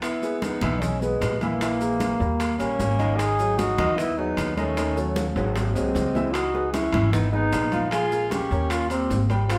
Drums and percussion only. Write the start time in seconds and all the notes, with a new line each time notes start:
0.02 high bongo, high conga, high timbale, maracas
0.22 high bongo, high conga, maracas
0.42 high bongo, high conga, high timbale, maracas
0.61 high conga, low conga, high timbale, maracas
0.82 high bongo, high conga, low conga, maracas
1.02 high bongo, high conga, maracas
1.21 high bongo, low bongo, high conga, high timbale, low timbale, maracas
1.41 high bongo, high conga, high timbale, maracas
1.61 high bongo, high conga, high timbale, maracas
1.81 high bongo, high conga, maracas
2.00 high bongo, high conga, high timbale, maracas
2.20 high conga, maracas
2.40 high bongo, high conga, high timbale, maracas
2.60 high bongo, high conga, high timbale, maracas
2.79 high bongo, low bongo, high conga, low timbale, maracas
2.99 high bongo, high conga, high timbale, maracas
3.19 high bongo, high conga, high timbale, maracas
3.39 high bongo, high conga, maracas
3.59 high bongo, high conga, high timbale, maracas
3.78 high conga, low conga, high timbale, maracas
3.98 high bongo, high conga, maracas
4.18 high bongo, high conga
4.37 high bongo, low bongo, high conga, high timbale, maracas
4.57 high bongo, high conga, high timbale, maracas
4.77 high bongo, high conga, high timbale, maracas
4.97 high bongo, high conga, maracas
5.16 high bongo, high conga, high timbale, maracas
5.36 high conga, high timbale, maracas
5.56 high bongo, high conga, low timbale, maracas
5.75 high bongo, high conga, low timbale, maracas
5.95 high bongo, low bongo, high conga, low timbale, maracas
6.15 high bongo, high conga, low timbale, maracas
6.34 high bongo, high timbale, maracas
6.54 high bongo, high conga
6.74 high bongo, high conga, high timbale, maracas
6.92 high conga, low conga, high timbale, maracas
7.13 high bongo, high conga, low conga, maracas
7.33 high bongo, high conga
7.53 high bongo, low bongo, high conga, high timbale, low timbale, maracas
7.72 high bongo, high conga, high timbale, maracas
7.91 high bongo, high conga, high timbale, maracas
8.12 high bongo, high conga, maracas
8.31 high bongo, high conga, high timbale, maracas
8.51 high conga, maracas
8.70 high bongo, high conga, high timbale, maracas
8.90 high bongo, high conga, high timbale, maracas
9.10 high bongo, low bongo, high conga, low timbale, maracas
9.30 high bongo, high conga, high timbale, maracas
9.50 high bongo, high conga, high timbale, maracas